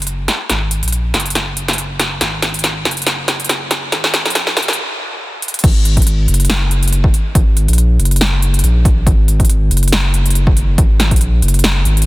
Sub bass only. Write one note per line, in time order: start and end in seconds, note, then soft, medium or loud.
0.00 0.27 F#1 loud
0.49 0.81 G#1 loud
0.83 1.13 A#1 medium
1.14 2.20 F#1 loud
2.21 2.84 G#1 loud
2.85 3.91 F#1 loud
3.93 4.24 G#1 loud
4.25 4.55 A#1 loud
4.57 4.78 F#1 loud
5.64 6.27 G#1 loud
6.28 7.13 F#1 loud
7.35 7.67 G#1 loud
7.68 7.98 A#1 loud
7.99 8.63 F#1 medium
8.64 9.05 A#1 medium
9.07 9.70 G#1 loud
9.71 10.77 F#1 loud
10.78 11.10 G#1 loud
11.11 11.41 A#1 loud
11.42 11.85 F#1 loud
11.85 12.06 G#1 medium